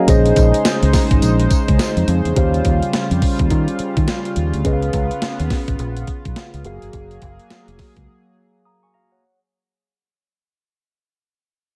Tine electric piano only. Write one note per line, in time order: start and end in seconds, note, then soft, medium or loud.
0.00 0.24 G#5 medium
0.07 2.32 C#4 medium
0.07 2.33 G#4 medium
0.07 2.33 C5 medium
0.07 2.33 D#5 medium
2.36 4.61 C#4 medium
2.36 4.61 G4 medium
2.36 4.61 C5 medium
2.36 4.62 F5 medium
4.64 6.61 C#4 medium
4.64 6.61 G#4 medium
4.64 6.61 B4 medium
4.64 4.74 D#5 medium
4.73 6.65 F5 medium
6.64 8.89 A#3 medium
6.64 8.90 F#4 medium
6.64 8.90 G#4 medium
6.64 8.34 F5 medium
8.65 8.82 A#5 medium
8.65 8.82 D#6 medium
8.83 8.94 G#5 medium
8.83 8.93 C#6 medium
8.94 9.11 F5 medium
8.94 9.10 A#5 medium
9.12 9.39 C#5 medium
9.12 9.38 F#5 medium